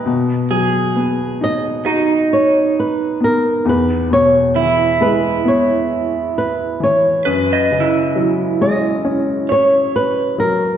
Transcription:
X:1
M:4/4
L:1/16
Q:1/4=67
K:B
V:1 name="Nylon-string guitar"
B6 d4 c2 B2 A2 | B2 c4 B2 c4 B2 c2- | c6 d4 c2 B2 A2 |]
V:2 name="Clean electric guitar"
z2 G6 D8- | D2 z2 E12 | B d E8 c6 |]
V:3 name="Upright piano" clef=bass
B,,2 F,2 B,2 D2 F6 B,2 | E,,2 B,,2 E,2 G,2 B,6 E,2 | F,,2 C,2 F,2 G,2 C6 F,2 |]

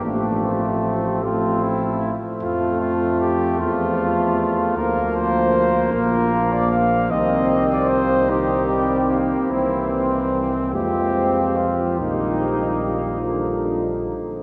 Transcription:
X:1
M:6/8
L:1/16
Q:3/8=50
K:F
V:1 name="Trumpet"
D2 C4 F2 E3 z | F2 F2 G2 F6 | [K:Cm] B2 c4 B3 d f2 | e3 d c2 G4- G z |
=E2 C4 G4 F2 | E6 z6 |]
V:2 name="Trumpet"
A,6 C4 z2 | A,12 | [K:Cm] B,12 | C6 E2 G,2 B,2 |
C4 z2 C6 | B,8- B, z3 |]
V:3 name="French horn"
A,6 A,4 z2 | A,6 A,6 | [K:Cm] B,6 B,6 | C6 C6 |
B,6 A,6 | G,6 F,4 z2 |]
V:4 name="Trombone" clef=bass
F,6 F,4 z2 | F,6 F,6 | [K:Cm] F,6 F,6 | E,6 E,6 |
=E,6 F,6 | E,6 D,4 z2 |]
V:5 name="Bass trombone" clef=bass
A,,,8- A,,,2 z2 | F,,6 E,,6 | [K:Cm] D,,6 B,,,6 | C,,12 |
C,,6 F,,6 | B,,,8- B,,,2 z2 |]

